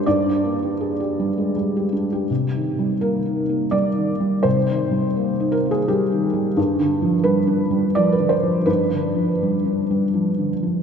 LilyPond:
<<
  \new Staff \with { instrumentName = "Felt piano" } { \time 3/4 \key c \minor \tempo 4 = 83 d''2~ d''8 r8 | r4 bes'4 d''4 | c''4. bes'16 aes'16 g'4 | r4 b'4 d''16 b'16 c''8 |
b'2~ b'8 r8 | }
  \new Staff \with { instrumentName = "Felt piano" } { \clef bass \time 3/4 \key c \minor <g, g'>16 d'16 bes16 g'16 aes'16 g'16 g16 aes16 g16 g'16 d'16 g'16 | \tuplet 3/2 { c8 ees8 g8 bes8 ees'8 bes8 g8 ees8 g8 } | \tuplet 3/2 { c8 ees8 g8 bes8 ees'8 bes8 g8 ees8 g8 } | \tuplet 3/2 { g,8 d8 f8 g8 d'8 g8 f8 d8 f8 } |
\tuplet 3/2 { g,8 d8 f8 g8 d'8 g8 f8 d8 f8 } | }
>>